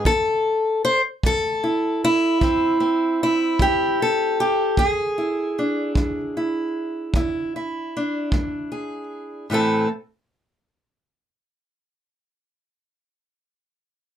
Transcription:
0.05 A2 A4, kick
0.85 C5
1.23 A3 A4, kick
1.64 E4
2.04 E4
2.41 A2 C4, kick
2.80 C4
3.23 E4
3.59 A3 G4, kick
4.02 A4
4.40 G4
4.77 E2 G#4, kick
5.18 E4
5.59 D4
5.95 G#3, kick
6.37 E4
7.14 E2 E4, kick
7.22 G4
7.56 E4
7.97 D4
8.32 G#3, kick
8.72 G#4
9.50 A2 E3 A3 C4
9.54 A4

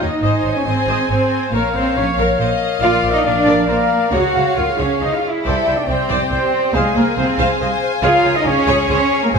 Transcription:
Already playing: D#4 D#5
0.01 D#2 C#5
0.08 D#4 D#5
0.22 G#1 G#4 C5 D#5 G#5
0.44 G#1 C5 C#5
0.56 C#4 C#5
0.65 G#1 C4 C5 D#5
0.87 G#1 C5 D#5
1.09 G#1 C4 C5 C#5
1.52 A#1 A#3 A#4 C#5 F5
1.75 A#1 C4 A#4 C5
1.96 A#1 C#4 A#4 C#5
2.17 A#1 A#4 C#5
2.39 A#1 A#4 C5 D#5
2.81 A#1 F4 A#4 D5 F5
3.03 A#1 A#4 C5
3.11 D#4 D#5
3.25 A#1 D4 A#4 D5
3.46 A#1 A#4 D5
3.67 A#1 A#3 A#4 C5 D5
4.11 C#2 F#4 G#4 C#5 F5 F#5
4.33 C#2 G#4 C5
4.56 C#2 F4 G#4 A#4 C#5 F5
4.68 G#4
4.78 C#2 C#4 G#4 C#5
5.01 C#2 D#4 G#4 C5 D#5
5.11 G#4 F5
5.16 F4 F5
5.29 E4 E5
5.44 C2 G4 A4 C5 D5 G5
5.67 C2 C5 D5 G5
5.77 D4 D5
5.87 C2 C4 G4 C5 D5 G5
6.09 C2 C5 D5 G5
6.31 C2 C4 G4 C5 D5 G5
6.54 D5 G5
6.74 C2 G#3 G#4 C5 F5 G#5
6.78 F5
6.95 C2 A#3 A#4 C5 D#5 F5
7.16 C2 C4 G#4 C5 F5
7.37 C2 C5 F5
7.60 C2 C5 D#5 F5
7.83 C5 F5
8.02 C#2 F4 G#4 A#4 C#5 F5 G#5
8.24 C#2 G#4 C5 C#5 G#5
8.35 D#4 D#5
8.45 C#2 C#4 G#4 C#5 G#5
8.67 C#2 G#4 C#5 G#5
8.89 C#2 C#4 G#4 C5 C#5 G#5
9.11 C#5 G#5
9.23 A#3 A#4
9.32 G#1 G#2 G#3 G#4 C5 G#5

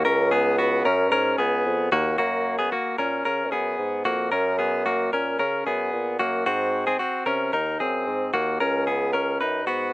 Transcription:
0.05 C#2 C#4 A#4
0.31 B3 G#4
0.58 B3 F#4
0.85 F#2 C#4 A#4
1.12 G#2 C#4 A#4
1.38 C#2 B3 G#4
1.65 F2
1.92 D#2 A#3 F#4
2.18 F#2 A#3 F#4
2.59 B3 G#4
2.72 A#3 F#4
2.98 A#2 C#4 A#4
3.25 C#3 C#4 A#4
3.52 F#2 B3 G#4
3.79 G#2
4.05 F2 A#3 F#4
4.32 F#2 C#4 A#4
4.59 B3 G#4
4.86 A#3 F#4
5.12 A#2 C#4 A#4
5.39 C#3 C#4 A#4
5.66 F#2 B3 G#4
5.93 A#2
6.19 F#2 A#3 F#4
6.46 G#2 C4 F#4
6.87 C4 G#4
6.99 C4 F#4
7.26 C3 C#4 A#4
7.53 D#2 D#4 A#4
7.80 F#2 C4 G#4
8.07 G#2
8.34 D#2 A#3 F#4
8.60 C#2 C#4 A#4
8.87 B3 G#4
9.13 C#4 A#4
9.40 F#2 D#4 B4
9.67 G#2 B3 F#4

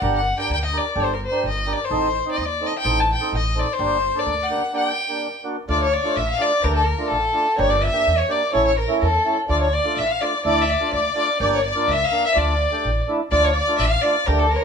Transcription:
Already playing: F#5
0.02 G1 D4 G4 A#4
0.16 F#5
0.38 D4 G4 A#4 G5
0.49 D2 G5
0.65 D#5
0.73 D4 G4 A#4
0.77 D5
0.96 G1 D4 G4 A4
1.00 C5
1.13 A#4
1.26 C5
1.31 D4 G4 A#4
1.44 G1
1.48 D#5
1.67 D4 G4 A#4
1.73 D5
1.85 C5
1.91 A1 C4 D#4 A4
2.26 C4 D#4 C5
2.31 D5
2.36 D#2 D#5
2.45 D5
2.61 C4 D#4 A4
2.67 D#5
2.79 G5
2.84 A1 C4 D#4 A4
3.00 A5
3.13 G5
3.20 C4 D#4 A4
3.32 A1
3.37 D#5
3.56 C4 D#4 A4 D5
3.73 C5
3.79 G1 A#3 D4 G4
4.16 A#3 D4 A4 D5
4.26 D2
4.43 F#5
4.50 A#3 D4 G4
4.73 A#3 D4 G4 G5
5.09 A#3 D4 G4
5.44 A#3 D4 F#4
5.68 D2 A3 D4 F4 D5
5.80 C#5
5.93 D5
6.04 A3 D4 F4
6.16 A1 E5
6.29 F5
6.40 A3 D4 F4 D5
6.62 D2 A3 D4 G4 A#4
6.76 A4
6.86 A#4
6.98 A3 D4 F4
7.07 A1 A4
7.34 A3 D4 F4
7.58 G1 A#3 D4 G4 C#5
7.70 D5
7.82 E5
7.93 A#3 D4 G4
8.07 E2
8.18 C#5
8.28 A#3 D4 G4 D5
8.52 A1 A3 C#4 E4 C#5
8.66 C#5
8.77 A#4
8.88 A3 C#4 E4
9.01 E2 A4
9.25 A3 C#4 E4
9.48 D2 A3 D4 F4 D5
9.60 C#5
9.73 D5
9.85 A3 D4 F4
9.97 A1 E5
10.09 F5
10.21 A3 D4 F4 D5
10.44 D2 A3 D4 E4 D5
10.61 D5 E5
10.66 D5 E5
10.70 D5
10.80 A3 D4 F4
10.93 D2 D5
11.15 A3 D4 F4 D5
11.40 G1 A#3 D4 G4 D5
11.55 C#5
11.64 D5
11.76 A#3 D4 F4
11.88 C#2 E5
12.04 F5
12.12 A#3 D4 A#4
12.25 E5
12.35 D2 A3 D4 F4 D5
12.72 A3 D4 G4
12.85 A1
13.08 A3 D4 E4
13.31 D2 A3 D4 F4 D5
13.43 C#5
13.54 D5
13.68 A3 D4 F4
13.78 A1 E5
13.90 F5
14.01 A3 D4 F4 D5
14.26 D2 A3 D4 G4 A#4
14.39 A4
14.50 A#4
14.56 C#5
14.61 A#4

